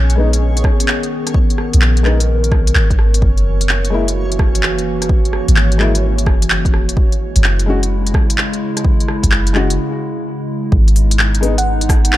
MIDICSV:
0, 0, Header, 1, 7, 480
1, 0, Start_track
1, 0, Key_signature, 5, "minor"
1, 0, Tempo, 468750
1, 1380, Time_signature, 4, 2, 24, 8
1, 12465, End_track
2, 0, Start_track
2, 0, Title_t, "FM electric piano"
2, 0, Program_c, 0, 5
2, 11859, Note_on_c, 0, 78, 86
2, 12465, Note_off_c, 0, 78, 0
2, 12465, End_track
3, 0, Start_track
3, 0, Title_t, "Synth texture"
3, 0, Program_c, 1, 99
3, 0, Note_on_c, 1, 61, 84
3, 0, Note_on_c, 1, 73, 83
3, 10023, Note_off_c, 1, 73, 0
3, 10024, Note_off_c, 1, 61, 0
3, 12465, End_track
4, 0, Start_track
4, 0, Title_t, "Ambient pad"
4, 0, Program_c, 2, 92
4, 0, Note_on_c, 2, 51, 77
4, 0, Note_on_c, 2, 59, 69
4, 0, Note_on_c, 2, 68, 85
4, 1366, Note_off_c, 2, 68, 0
4, 1385, Note_on_c, 2, 70, 84
4, 3266, Note_off_c, 2, 59, 0
4, 3267, Note_off_c, 2, 51, 0
4, 3284, Note_off_c, 2, 70, 0
4, 3304, Note_on_c, 2, 58, 69
4, 3307, Note_on_c, 2, 52, 77
4, 3307, Note_on_c, 2, 66, 86
4, 7104, Note_off_c, 2, 58, 0
4, 7105, Note_off_c, 2, 52, 0
4, 7105, Note_off_c, 2, 66, 0
4, 7133, Note_on_c, 2, 64, 85
4, 7136, Note_on_c, 2, 49, 78
4, 7137, Note_on_c, 2, 56, 71
4, 10939, Note_off_c, 2, 64, 0
4, 10940, Note_off_c, 2, 49, 0
4, 10941, Note_off_c, 2, 56, 0
4, 10983, Note_on_c, 2, 59, 78
4, 10983, Note_on_c, 2, 63, 89
4, 10986, Note_on_c, 2, 56, 71
4, 12465, Note_off_c, 2, 56, 0
4, 12465, Note_off_c, 2, 59, 0
4, 12465, Note_off_c, 2, 63, 0
4, 12465, End_track
5, 0, Start_track
5, 0, Title_t, "Felt piano"
5, 0, Program_c, 3, 0
5, 159, Note_on_c, 3, 56, 81
5, 181, Note_on_c, 3, 59, 72
5, 200, Note_on_c, 3, 63, 92
5, 279, Note_off_c, 3, 56, 0
5, 291, Note_off_c, 3, 59, 0
5, 300, Note_off_c, 3, 63, 0
5, 2078, Note_on_c, 3, 56, 79
5, 2097, Note_on_c, 3, 59, 71
5, 2116, Note_on_c, 3, 63, 87
5, 2199, Note_off_c, 3, 56, 0
5, 2209, Note_off_c, 3, 59, 0
5, 2218, Note_off_c, 3, 63, 0
5, 3994, Note_on_c, 3, 56, 83
5, 4017, Note_on_c, 3, 58, 74
5, 4035, Note_on_c, 3, 64, 89
5, 4117, Note_off_c, 3, 56, 0
5, 4129, Note_off_c, 3, 58, 0
5, 4137, Note_off_c, 3, 64, 0
5, 5916, Note_on_c, 3, 56, 80
5, 5937, Note_on_c, 3, 58, 74
5, 5959, Note_on_c, 3, 64, 91
5, 6038, Note_off_c, 3, 56, 0
5, 6048, Note_off_c, 3, 58, 0
5, 6060, Note_off_c, 3, 64, 0
5, 7844, Note_on_c, 3, 56, 86
5, 7864, Note_on_c, 3, 61, 76
5, 7883, Note_on_c, 3, 66, 93
5, 7962, Note_off_c, 3, 56, 0
5, 7972, Note_off_c, 3, 61, 0
5, 7982, Note_off_c, 3, 66, 0
5, 9760, Note_on_c, 3, 56, 85
5, 9781, Note_on_c, 3, 61, 81
5, 9798, Note_on_c, 3, 66, 96
5, 9880, Note_off_c, 3, 56, 0
5, 9891, Note_off_c, 3, 61, 0
5, 9899, Note_off_c, 3, 66, 0
5, 11680, Note_on_c, 3, 56, 84
5, 11698, Note_on_c, 3, 59, 78
5, 11721, Note_on_c, 3, 63, 95
5, 11800, Note_off_c, 3, 56, 0
5, 11809, Note_off_c, 3, 59, 0
5, 11821, Note_off_c, 3, 63, 0
5, 12465, End_track
6, 0, Start_track
6, 0, Title_t, "808-style bass"
6, 0, Program_c, 4, 38
6, 0, Note_on_c, 4, 34, 75
6, 651, Note_off_c, 4, 34, 0
6, 1782, Note_on_c, 4, 34, 74
6, 2575, Note_on_c, 4, 35, 100
6, 2590, Note_off_c, 4, 34, 0
6, 2805, Note_off_c, 4, 35, 0
6, 2819, Note_on_c, 4, 32, 83
6, 3289, Note_off_c, 4, 32, 0
6, 3297, Note_on_c, 4, 30, 98
6, 5595, Note_off_c, 4, 30, 0
6, 5614, Note_on_c, 4, 32, 75
6, 6415, Note_on_c, 4, 30, 95
6, 6430, Note_off_c, 4, 32, 0
6, 6896, Note_on_c, 4, 28, 84
6, 6912, Note_off_c, 4, 30, 0
6, 7275, Note_off_c, 4, 28, 0
6, 7537, Note_on_c, 4, 30, 76
6, 8330, Note_off_c, 4, 30, 0
6, 9453, Note_on_c, 4, 30, 79
6, 10019, Note_off_c, 4, 30, 0
6, 10979, Note_on_c, 4, 32, 96
6, 12465, Note_off_c, 4, 32, 0
6, 12465, End_track
7, 0, Start_track
7, 0, Title_t, "Drums"
7, 99, Note_on_c, 9, 42, 42
7, 202, Note_off_c, 9, 42, 0
7, 341, Note_on_c, 9, 42, 53
7, 443, Note_off_c, 9, 42, 0
7, 581, Note_on_c, 9, 42, 44
7, 656, Note_on_c, 9, 36, 106
7, 663, Note_on_c, 9, 37, 61
7, 684, Note_off_c, 9, 42, 0
7, 758, Note_off_c, 9, 36, 0
7, 765, Note_off_c, 9, 37, 0
7, 820, Note_on_c, 9, 42, 56
7, 902, Note_on_c, 9, 39, 103
7, 922, Note_off_c, 9, 42, 0
7, 1004, Note_off_c, 9, 39, 0
7, 1058, Note_on_c, 9, 42, 30
7, 1160, Note_off_c, 9, 42, 0
7, 1297, Note_on_c, 9, 37, 33
7, 1297, Note_on_c, 9, 42, 53
7, 1376, Note_on_c, 9, 36, 116
7, 1399, Note_off_c, 9, 37, 0
7, 1399, Note_off_c, 9, 42, 0
7, 1478, Note_off_c, 9, 36, 0
7, 1538, Note_on_c, 9, 42, 30
7, 1619, Note_on_c, 9, 37, 47
7, 1640, Note_off_c, 9, 42, 0
7, 1721, Note_off_c, 9, 37, 0
7, 1776, Note_on_c, 9, 42, 51
7, 1859, Note_on_c, 9, 39, 105
7, 1878, Note_off_c, 9, 42, 0
7, 1961, Note_off_c, 9, 39, 0
7, 2016, Note_on_c, 9, 42, 41
7, 2099, Note_on_c, 9, 39, 58
7, 2118, Note_off_c, 9, 42, 0
7, 2201, Note_off_c, 9, 39, 0
7, 2256, Note_on_c, 9, 42, 52
7, 2358, Note_off_c, 9, 42, 0
7, 2497, Note_on_c, 9, 42, 41
7, 2576, Note_on_c, 9, 36, 109
7, 2579, Note_on_c, 9, 37, 59
7, 2600, Note_off_c, 9, 42, 0
7, 2679, Note_off_c, 9, 36, 0
7, 2681, Note_off_c, 9, 37, 0
7, 2737, Note_on_c, 9, 42, 53
7, 2819, Note_on_c, 9, 39, 104
7, 2839, Note_off_c, 9, 42, 0
7, 2921, Note_off_c, 9, 39, 0
7, 2974, Note_on_c, 9, 36, 104
7, 2977, Note_on_c, 9, 42, 29
7, 3058, Note_on_c, 9, 37, 45
7, 3076, Note_off_c, 9, 36, 0
7, 3079, Note_off_c, 9, 42, 0
7, 3161, Note_off_c, 9, 37, 0
7, 3218, Note_on_c, 9, 42, 51
7, 3297, Note_on_c, 9, 36, 112
7, 3320, Note_off_c, 9, 42, 0
7, 3400, Note_off_c, 9, 36, 0
7, 3456, Note_on_c, 9, 42, 29
7, 3558, Note_off_c, 9, 42, 0
7, 3695, Note_on_c, 9, 42, 51
7, 3780, Note_on_c, 9, 39, 99
7, 3798, Note_off_c, 9, 42, 0
7, 3882, Note_off_c, 9, 39, 0
7, 3937, Note_on_c, 9, 42, 39
7, 4040, Note_off_c, 9, 42, 0
7, 4178, Note_on_c, 9, 42, 52
7, 4281, Note_off_c, 9, 42, 0
7, 4420, Note_on_c, 9, 42, 41
7, 4497, Note_on_c, 9, 36, 101
7, 4500, Note_on_c, 9, 37, 57
7, 4522, Note_off_c, 9, 42, 0
7, 4599, Note_off_c, 9, 36, 0
7, 4602, Note_off_c, 9, 37, 0
7, 4659, Note_on_c, 9, 42, 52
7, 4741, Note_on_c, 9, 39, 97
7, 4762, Note_off_c, 9, 42, 0
7, 4843, Note_off_c, 9, 39, 0
7, 4899, Note_on_c, 9, 42, 29
7, 5001, Note_off_c, 9, 42, 0
7, 5138, Note_on_c, 9, 37, 33
7, 5138, Note_on_c, 9, 42, 50
7, 5216, Note_on_c, 9, 36, 107
7, 5241, Note_off_c, 9, 37, 0
7, 5241, Note_off_c, 9, 42, 0
7, 5318, Note_off_c, 9, 36, 0
7, 5378, Note_on_c, 9, 42, 28
7, 5459, Note_on_c, 9, 37, 48
7, 5481, Note_off_c, 9, 42, 0
7, 5561, Note_off_c, 9, 37, 0
7, 5616, Note_on_c, 9, 42, 48
7, 5697, Note_on_c, 9, 39, 97
7, 5718, Note_off_c, 9, 42, 0
7, 5799, Note_off_c, 9, 39, 0
7, 5855, Note_on_c, 9, 42, 41
7, 5938, Note_on_c, 9, 39, 58
7, 5958, Note_off_c, 9, 42, 0
7, 6040, Note_off_c, 9, 39, 0
7, 6093, Note_on_c, 9, 42, 49
7, 6195, Note_off_c, 9, 42, 0
7, 6333, Note_on_c, 9, 42, 41
7, 6415, Note_on_c, 9, 36, 102
7, 6418, Note_on_c, 9, 37, 62
7, 6435, Note_off_c, 9, 42, 0
7, 6517, Note_off_c, 9, 36, 0
7, 6520, Note_off_c, 9, 37, 0
7, 6576, Note_on_c, 9, 42, 52
7, 6659, Note_on_c, 9, 39, 95
7, 6679, Note_off_c, 9, 42, 0
7, 6761, Note_off_c, 9, 39, 0
7, 6811, Note_on_c, 9, 36, 99
7, 6817, Note_on_c, 9, 42, 28
7, 6899, Note_on_c, 9, 37, 51
7, 6914, Note_off_c, 9, 36, 0
7, 6920, Note_off_c, 9, 42, 0
7, 7001, Note_off_c, 9, 37, 0
7, 7055, Note_on_c, 9, 42, 50
7, 7135, Note_on_c, 9, 36, 111
7, 7157, Note_off_c, 9, 42, 0
7, 7238, Note_off_c, 9, 36, 0
7, 7295, Note_on_c, 9, 42, 28
7, 7398, Note_off_c, 9, 42, 0
7, 7534, Note_on_c, 9, 42, 52
7, 7618, Note_on_c, 9, 39, 101
7, 7637, Note_off_c, 9, 42, 0
7, 7721, Note_off_c, 9, 39, 0
7, 7777, Note_on_c, 9, 42, 42
7, 7880, Note_off_c, 9, 42, 0
7, 8018, Note_on_c, 9, 42, 51
7, 8120, Note_off_c, 9, 42, 0
7, 8259, Note_on_c, 9, 42, 43
7, 8337, Note_on_c, 9, 36, 100
7, 8343, Note_on_c, 9, 37, 62
7, 8361, Note_off_c, 9, 42, 0
7, 8440, Note_off_c, 9, 36, 0
7, 8445, Note_off_c, 9, 37, 0
7, 8499, Note_on_c, 9, 42, 53
7, 8580, Note_on_c, 9, 39, 98
7, 8601, Note_off_c, 9, 42, 0
7, 8683, Note_off_c, 9, 39, 0
7, 8739, Note_on_c, 9, 42, 29
7, 8841, Note_off_c, 9, 42, 0
7, 8978, Note_on_c, 9, 37, 35
7, 8978, Note_on_c, 9, 42, 54
7, 9057, Note_on_c, 9, 36, 109
7, 9080, Note_off_c, 9, 37, 0
7, 9080, Note_off_c, 9, 42, 0
7, 9160, Note_off_c, 9, 36, 0
7, 9220, Note_on_c, 9, 42, 31
7, 9302, Note_on_c, 9, 37, 53
7, 9322, Note_off_c, 9, 42, 0
7, 9404, Note_off_c, 9, 37, 0
7, 9454, Note_on_c, 9, 36, 55
7, 9457, Note_on_c, 9, 42, 55
7, 9538, Note_on_c, 9, 39, 97
7, 9556, Note_off_c, 9, 36, 0
7, 9559, Note_off_c, 9, 42, 0
7, 9641, Note_off_c, 9, 39, 0
7, 9695, Note_on_c, 9, 42, 44
7, 9777, Note_on_c, 9, 39, 56
7, 9797, Note_off_c, 9, 42, 0
7, 9879, Note_off_c, 9, 39, 0
7, 9936, Note_on_c, 9, 42, 55
7, 10038, Note_off_c, 9, 42, 0
7, 10979, Note_on_c, 9, 36, 117
7, 11081, Note_off_c, 9, 36, 0
7, 11140, Note_on_c, 9, 42, 32
7, 11223, Note_on_c, 9, 46, 72
7, 11242, Note_off_c, 9, 42, 0
7, 11325, Note_off_c, 9, 46, 0
7, 11380, Note_on_c, 9, 42, 55
7, 11461, Note_on_c, 9, 39, 104
7, 11482, Note_off_c, 9, 42, 0
7, 11564, Note_off_c, 9, 39, 0
7, 11619, Note_on_c, 9, 42, 47
7, 11703, Note_on_c, 9, 46, 66
7, 11721, Note_off_c, 9, 42, 0
7, 11806, Note_off_c, 9, 46, 0
7, 11860, Note_on_c, 9, 42, 57
7, 11962, Note_off_c, 9, 42, 0
7, 12097, Note_on_c, 9, 42, 46
7, 12178, Note_on_c, 9, 36, 110
7, 12182, Note_on_c, 9, 37, 66
7, 12182, Note_on_c, 9, 46, 69
7, 12199, Note_off_c, 9, 42, 0
7, 12280, Note_off_c, 9, 36, 0
7, 12285, Note_off_c, 9, 37, 0
7, 12285, Note_off_c, 9, 46, 0
7, 12338, Note_on_c, 9, 42, 60
7, 12418, Note_on_c, 9, 39, 101
7, 12440, Note_off_c, 9, 42, 0
7, 12465, Note_off_c, 9, 39, 0
7, 12465, End_track
0, 0, End_of_file